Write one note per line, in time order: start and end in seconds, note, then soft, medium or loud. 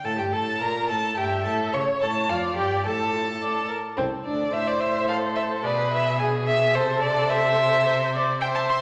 0.04 0.20 A2 medium
0.04 0.18 A4 medium
0.04 0.18 A5 medium
0.18 0.34 G2 medium
0.18 0.33 G4 medium
0.18 0.24 G5 medium
0.32 0.63 A2 medium
0.32 0.61 A4 medium
0.32 0.63 A5 medium
0.61 0.91 A#2 medium
0.61 0.90 A#4 medium
0.61 0.89 A#5 medium
0.89 1.17 A2 medium
0.89 1.19 A4 medium
0.89 1.16 A5 medium
1.17 1.47 G2 medium
1.17 1.45 G4 medium
1.17 1.76 E5 medium
1.17 1.44 G5 medium
1.45 1.73 A2 medium
1.45 1.75 A4 medium
1.45 1.53 A5 medium
1.73 1.82 C#3 medium
1.73 2.02 C#5 medium
1.73 2.30 C#5 medium
1.73 1.81 C#6 medium
2.01 2.32 A2 medium
2.01 2.10 A4 medium
2.01 2.31 A5 medium
2.29 2.60 F2 medium
2.29 2.56 F4 medium
2.29 2.87 D5 medium
2.29 2.56 F5 medium
2.56 2.88 G2 medium
2.56 2.84 G4 medium
2.56 2.85 G5 medium
2.86 3.70 A2 medium
2.86 3.13 A4 medium
2.86 3.68 A4 medium
2.86 3.68 A5 medium
3.13 3.21 F4 medium
3.42 3.69 D5 medium
3.69 3.77 A#4 medium
3.97 4.06 C2 medium
3.97 4.05 C4 medium
3.97 4.52 A4 medium
3.97 4.05 C5 medium
4.25 4.53 D2 medium
4.25 4.53 D4 medium
4.25 4.54 D5 medium
4.53 5.60 A2 medium
4.53 5.62 C5 medium
4.53 5.10 C5 medium
4.53 4.69 E5 medium
4.67 4.82 D5 medium
4.80 5.07 E5 medium
5.08 5.66 A4 medium
5.08 5.16 F5 medium
5.35 5.43 E5 medium
5.64 6.76 B2 medium
5.64 6.19 G#4 medium
5.64 6.18 B4 medium
5.64 5.91 D5 medium
5.91 6.19 E5 medium
6.19 6.77 G#4 medium
6.19 6.76 G#4 medium
6.19 6.27 G#5 medium
6.47 6.76 E5 loud
6.75 8.81 C3 medium
6.75 7.32 A4 medium
6.75 7.85 A4 medium
6.75 7.01 C5 loud
7.02 7.31 D5 loud
7.30 8.41 C5 medium
7.30 8.13 E5 loud
7.86 7.94 C5 medium
8.13 8.40 D5 medium
8.41 8.81 C5 medium
8.41 8.81 E5 medium
8.41 8.46 G5 loud
8.55 8.60 A5 medium
8.69 8.77 C6 loud